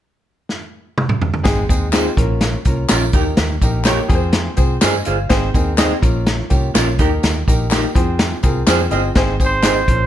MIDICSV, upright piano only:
0, 0, Header, 1, 2, 480
1, 0, Start_track
1, 0, Key_signature, -4, "major"
1, 0, Tempo, 481928
1, 1440, Time_signature, 4, 2, 24, 8
1, 10026, End_track
2, 0, Start_track
2, 0, Title_t, "Upright piano"
2, 0, Program_c, 0, 0
2, 1429, Note_on_c, 0, 63, 85
2, 1430, Note_on_c, 0, 60, 89
2, 1434, Note_on_c, 0, 68, 100
2, 1437, Note_on_c, 0, 56, 98
2, 1607, Note_off_c, 0, 60, 0
2, 1607, Note_off_c, 0, 63, 0
2, 1609, Note_off_c, 0, 68, 0
2, 1611, Note_off_c, 0, 56, 0
2, 1684, Note_on_c, 0, 60, 72
2, 1686, Note_on_c, 0, 56, 78
2, 1688, Note_on_c, 0, 63, 69
2, 1689, Note_on_c, 0, 68, 82
2, 1854, Note_off_c, 0, 60, 0
2, 1855, Note_off_c, 0, 56, 0
2, 1856, Note_off_c, 0, 63, 0
2, 1857, Note_off_c, 0, 68, 0
2, 1923, Note_on_c, 0, 56, 80
2, 1923, Note_on_c, 0, 65, 94
2, 1927, Note_on_c, 0, 63, 73
2, 1932, Note_on_c, 0, 60, 76
2, 2093, Note_off_c, 0, 56, 0
2, 2094, Note_off_c, 0, 65, 0
2, 2096, Note_off_c, 0, 63, 0
2, 2098, Note_off_c, 0, 60, 0
2, 2169, Note_on_c, 0, 58, 85
2, 2169, Note_on_c, 0, 70, 100
2, 2170, Note_on_c, 0, 61, 74
2, 2178, Note_on_c, 0, 65, 69
2, 2548, Note_off_c, 0, 58, 0
2, 2548, Note_off_c, 0, 70, 0
2, 2549, Note_off_c, 0, 61, 0
2, 2552, Note_off_c, 0, 65, 0
2, 2653, Note_on_c, 0, 58, 74
2, 2653, Note_on_c, 0, 65, 68
2, 2658, Note_on_c, 0, 70, 87
2, 2661, Note_on_c, 0, 61, 70
2, 2819, Note_off_c, 0, 58, 0
2, 2819, Note_off_c, 0, 65, 0
2, 2821, Note_off_c, 0, 70, 0
2, 2822, Note_off_c, 0, 61, 0
2, 2883, Note_on_c, 0, 61, 73
2, 2887, Note_on_c, 0, 65, 73
2, 2888, Note_on_c, 0, 58, 72
2, 2889, Note_on_c, 0, 70, 91
2, 3054, Note_off_c, 0, 61, 0
2, 3056, Note_off_c, 0, 58, 0
2, 3056, Note_off_c, 0, 65, 0
2, 3056, Note_off_c, 0, 70, 0
2, 3124, Note_on_c, 0, 58, 84
2, 3130, Note_on_c, 0, 63, 73
2, 3133, Note_on_c, 0, 67, 71
2, 3135, Note_on_c, 0, 70, 84
2, 3506, Note_off_c, 0, 58, 0
2, 3509, Note_off_c, 0, 63, 0
2, 3510, Note_off_c, 0, 67, 0
2, 3511, Note_off_c, 0, 70, 0
2, 3611, Note_on_c, 0, 63, 77
2, 3615, Note_on_c, 0, 67, 78
2, 3618, Note_on_c, 0, 70, 93
2, 3620, Note_on_c, 0, 58, 82
2, 3777, Note_off_c, 0, 63, 0
2, 3779, Note_off_c, 0, 67, 0
2, 3781, Note_off_c, 0, 70, 0
2, 3782, Note_off_c, 0, 58, 0
2, 3838, Note_on_c, 0, 63, 78
2, 3843, Note_on_c, 0, 58, 89
2, 3849, Note_on_c, 0, 67, 81
2, 3850, Note_on_c, 0, 73, 100
2, 4011, Note_off_c, 0, 63, 0
2, 4014, Note_off_c, 0, 58, 0
2, 4016, Note_off_c, 0, 67, 0
2, 4017, Note_off_c, 0, 73, 0
2, 4066, Note_on_c, 0, 65, 73
2, 4067, Note_on_c, 0, 68, 84
2, 4070, Note_on_c, 0, 70, 72
2, 4073, Note_on_c, 0, 60, 76
2, 4132, Note_off_c, 0, 70, 0
2, 4134, Note_on_c, 0, 72, 90
2, 4456, Note_off_c, 0, 65, 0
2, 4457, Note_off_c, 0, 68, 0
2, 4460, Note_off_c, 0, 60, 0
2, 4490, Note_off_c, 0, 72, 0
2, 4545, Note_on_c, 0, 60, 71
2, 4550, Note_on_c, 0, 68, 72
2, 4551, Note_on_c, 0, 72, 83
2, 4552, Note_on_c, 0, 65, 65
2, 4725, Note_off_c, 0, 60, 0
2, 4727, Note_off_c, 0, 68, 0
2, 4728, Note_off_c, 0, 65, 0
2, 4728, Note_off_c, 0, 72, 0
2, 4799, Note_on_c, 0, 75, 62
2, 4804, Note_on_c, 0, 80, 66
2, 4807, Note_on_c, 0, 72, 57
2, 5025, Note_off_c, 0, 80, 0
2, 5027, Note_off_c, 0, 75, 0
2, 5031, Note_off_c, 0, 72, 0
2, 5041, Note_on_c, 0, 77, 68
2, 5264, Note_off_c, 0, 77, 0
2, 5273, Note_on_c, 0, 72, 122
2, 5278, Note_on_c, 0, 63, 86
2, 5278, Note_on_c, 0, 68, 96
2, 5282, Note_on_c, 0, 60, 99
2, 5449, Note_off_c, 0, 72, 0
2, 5451, Note_off_c, 0, 63, 0
2, 5451, Note_off_c, 0, 68, 0
2, 5453, Note_off_c, 0, 60, 0
2, 5518, Note_on_c, 0, 60, 92
2, 5522, Note_on_c, 0, 68, 77
2, 5523, Note_on_c, 0, 63, 79
2, 5524, Note_on_c, 0, 70, 93
2, 5691, Note_off_c, 0, 60, 0
2, 5693, Note_off_c, 0, 68, 0
2, 5694, Note_off_c, 0, 63, 0
2, 5694, Note_off_c, 0, 70, 0
2, 5756, Note_on_c, 0, 60, 89
2, 5758, Note_on_c, 0, 63, 86
2, 5759, Note_on_c, 0, 75, 105
2, 5760, Note_on_c, 0, 68, 75
2, 5930, Note_off_c, 0, 60, 0
2, 5931, Note_off_c, 0, 63, 0
2, 5932, Note_off_c, 0, 68, 0
2, 5932, Note_off_c, 0, 75, 0
2, 5992, Note_on_c, 0, 65, 81
2, 5995, Note_on_c, 0, 58, 88
2, 5996, Note_on_c, 0, 70, 93
2, 6001, Note_on_c, 0, 61, 77
2, 6380, Note_off_c, 0, 65, 0
2, 6381, Note_off_c, 0, 58, 0
2, 6382, Note_off_c, 0, 70, 0
2, 6384, Note_off_c, 0, 61, 0
2, 6472, Note_on_c, 0, 58, 79
2, 6472, Note_on_c, 0, 61, 73
2, 6475, Note_on_c, 0, 67, 83
2, 6477, Note_on_c, 0, 65, 69
2, 6648, Note_off_c, 0, 58, 0
2, 6648, Note_off_c, 0, 61, 0
2, 6650, Note_off_c, 0, 67, 0
2, 6651, Note_off_c, 0, 65, 0
2, 6721, Note_on_c, 0, 58, 84
2, 6722, Note_on_c, 0, 61, 73
2, 6726, Note_on_c, 0, 65, 79
2, 6729, Note_on_c, 0, 70, 82
2, 6893, Note_off_c, 0, 58, 0
2, 6894, Note_off_c, 0, 61, 0
2, 6895, Note_off_c, 0, 65, 0
2, 6897, Note_off_c, 0, 70, 0
2, 6969, Note_on_c, 0, 63, 82
2, 6972, Note_on_c, 0, 70, 93
2, 6975, Note_on_c, 0, 58, 81
2, 6978, Note_on_c, 0, 67, 75
2, 7349, Note_off_c, 0, 63, 0
2, 7350, Note_off_c, 0, 70, 0
2, 7352, Note_off_c, 0, 58, 0
2, 7353, Note_off_c, 0, 67, 0
2, 7447, Note_on_c, 0, 58, 79
2, 7452, Note_on_c, 0, 67, 72
2, 7453, Note_on_c, 0, 63, 79
2, 7455, Note_on_c, 0, 70, 93
2, 7616, Note_off_c, 0, 58, 0
2, 7618, Note_off_c, 0, 67, 0
2, 7619, Note_off_c, 0, 63, 0
2, 7620, Note_off_c, 0, 70, 0
2, 7674, Note_on_c, 0, 58, 84
2, 7675, Note_on_c, 0, 67, 80
2, 7678, Note_on_c, 0, 63, 80
2, 7681, Note_on_c, 0, 70, 87
2, 7850, Note_off_c, 0, 58, 0
2, 7850, Note_off_c, 0, 67, 0
2, 7852, Note_off_c, 0, 63, 0
2, 7853, Note_off_c, 0, 70, 0
2, 7915, Note_on_c, 0, 65, 74
2, 7918, Note_on_c, 0, 68, 75
2, 7919, Note_on_c, 0, 72, 87
2, 7920, Note_on_c, 0, 60, 88
2, 8302, Note_off_c, 0, 65, 0
2, 8304, Note_off_c, 0, 68, 0
2, 8304, Note_off_c, 0, 72, 0
2, 8305, Note_off_c, 0, 60, 0
2, 8395, Note_on_c, 0, 65, 73
2, 8396, Note_on_c, 0, 60, 73
2, 8397, Note_on_c, 0, 68, 71
2, 8397, Note_on_c, 0, 70, 88
2, 8571, Note_off_c, 0, 60, 0
2, 8571, Note_off_c, 0, 65, 0
2, 8572, Note_off_c, 0, 68, 0
2, 8572, Note_off_c, 0, 70, 0
2, 8641, Note_on_c, 0, 65, 75
2, 8642, Note_on_c, 0, 68, 78
2, 8646, Note_on_c, 0, 60, 85
2, 8649, Note_on_c, 0, 72, 84
2, 8814, Note_off_c, 0, 65, 0
2, 8814, Note_off_c, 0, 68, 0
2, 8816, Note_off_c, 0, 60, 0
2, 8817, Note_off_c, 0, 72, 0
2, 8873, Note_on_c, 0, 60, 78
2, 8873, Note_on_c, 0, 68, 73
2, 8880, Note_on_c, 0, 75, 84
2, 8882, Note_on_c, 0, 65, 72
2, 9050, Note_off_c, 0, 60, 0
2, 9050, Note_off_c, 0, 68, 0
2, 9053, Note_off_c, 0, 75, 0
2, 9054, Note_off_c, 0, 65, 0
2, 9129, Note_on_c, 0, 72, 114
2, 9131, Note_on_c, 0, 60, 100
2, 9133, Note_on_c, 0, 63, 91
2, 9135, Note_on_c, 0, 68, 99
2, 9298, Note_off_c, 0, 72, 0
2, 9299, Note_off_c, 0, 60, 0
2, 9300, Note_off_c, 0, 63, 0
2, 9301, Note_off_c, 0, 68, 0
2, 9362, Note_on_c, 0, 60, 67
2, 9364, Note_on_c, 0, 68, 69
2, 9369, Note_on_c, 0, 72, 72
2, 9373, Note_on_c, 0, 63, 64
2, 9535, Note_off_c, 0, 60, 0
2, 9536, Note_off_c, 0, 68, 0
2, 9538, Note_off_c, 0, 72, 0
2, 9540, Note_off_c, 0, 63, 0
2, 9591, Note_on_c, 0, 63, 72
2, 9592, Note_on_c, 0, 60, 75
2, 9597, Note_on_c, 0, 68, 70
2, 9597, Note_on_c, 0, 75, 80
2, 9769, Note_off_c, 0, 63, 0
2, 9770, Note_off_c, 0, 60, 0
2, 9772, Note_off_c, 0, 68, 0
2, 9772, Note_off_c, 0, 75, 0
2, 9847, Note_on_c, 0, 65, 61
2, 9848, Note_on_c, 0, 58, 63
2, 9848, Note_on_c, 0, 61, 61
2, 9855, Note_on_c, 0, 70, 74
2, 10026, Note_off_c, 0, 58, 0
2, 10026, Note_off_c, 0, 61, 0
2, 10026, Note_off_c, 0, 65, 0
2, 10026, Note_off_c, 0, 70, 0
2, 10026, End_track
0, 0, End_of_file